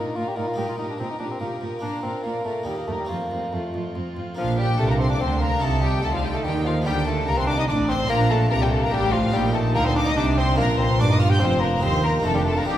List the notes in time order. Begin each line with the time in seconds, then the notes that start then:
Already playing: A#2 A#3 D4 D#4 F4 A#4 D5
0.16 A#2 F4 A#4 D5
0.28 G4
0.37 A#2 D#4 F4 A#4 D5
0.48 F4
0.54 A#2 A#3 D#4 G4 D#5
0.59 A#4
0.69 F4
0.78 A#2 D#4 G4 A#4 D#5
0.90 D4
0.98 A#2 C4 G4 A#4 D#5
1.11 D#4
1.19 A#2 D4 G4 A#4 D#5
1.31 C4
1.40 A#2 A#3 G4 A#4 D#5
1.61 A#2 G4 A#4 D#5
1.79 A#2 A#3 D4 F4 A#4 D5
2.02 A#2 C4 F4 A#4 D5
2.23 A#2 A#3 F4 A#4 D5
2.44 A#2 A3 F4 A#4 D5
2.63 D#2 G3 A#3 D#4 G4 A#4 D#5
2.78 A#3
2.87 D#2 A3 G4 A#4 D#5
2.99 G3
3.05 A3 C4
3.09 F2 A#3 F4 C5
3.31 F2 F4 C5
3.52 F2 A3 F4 C5
3.74 F2 F4 C5
3.95 F2 F4 C5
4.16 F2 F4 C5
4.35 A#1 A#2 F3 A#3 D4 F4 F5
4.58 G3 G4 G5
4.78 C2 C3 A3 A4 A5
4.89 A#3 A#4 A#5
4.99 C4 C5 C6
5.09 D4 D5 D6
5.20 D2 D3 C4 C5 C6
5.40 A#3 A#4 A#5
5.59 C2 C3 A3 D#4 F4 A4 A5
5.82 G3 G4 G5
6.02 D2 D3 A3 D#4 A4 A5
6.12 F3 F4 F5
6.23 G3 G4 G5
6.34 A3 A4 A5
6.44 D#2 D#3 G3 G4 G5
6.65 F3 F4 F5
6.82 D3 G3 A#3 D4 F4 G4 G5
6.86 D2 D3 D4
7.06 A3 A4 A5
7.27 C2 C3 A#3 D4 A#4 A#5
7.37 C4 C5 C6
7.47 D4 D5 D6
7.57 D#4 D#5 D#6
7.68 A1 A2 D4 D5 D6
7.88 C4 C5 C6
8.05 A#3 D4 F4
8.09 A#1 A#2 A#3 D4 A#4 A#5
8.30 A3 A4 A5
8.50 C2 C3 A#3 D4 A#4 A#5
8.61 G3 G4 G5
8.71 A3 A4 A5
8.82 A#3 A#4 A#5
8.92 A1 A2 G3 G4 G5
9.12 F3 F4 F5
9.29 C4 D#4 F4
9.33 A#1 A#2 G3 D#4 G4 G5
9.54 A3 A4 A5
9.74 D2 D3 A#3 A#4 A#5
9.85 C4 C5 C6
9.95 D4 D5 D6
10.06 D#4 D#5 D#6
10.16 C2 C3 D4 D5 D6
10.37 C4 C5 C6
10.54 A#3 D4 F4
10.58 A#1 A#2 A#4 A#5
10.78 C4 C5 C6
10.99 G1 G2 D4 D5 D6
11.09 D#4 D#5 D#6
11.20 F4 F5 F6
11.30 G4 G5 G6
11.40 F1 F2 C4 C5 C6
11.61 A#3 A#4 A#5
11.78 A#3 C4 D#4 G4
11.82 D#2 D#4 C5 C6
12.03 A#3 A#4 A#5
12.20 A3 A#3 D4 F4 A5
12.24 F1 F2 D4 A4
12.34 G3 G4 G5
12.44 A3 A4 A5
12.56 A#3 A#4 A#5
12.62 C4 D#4 F4
12.66 F1 F2 G3 D#4 G4 G5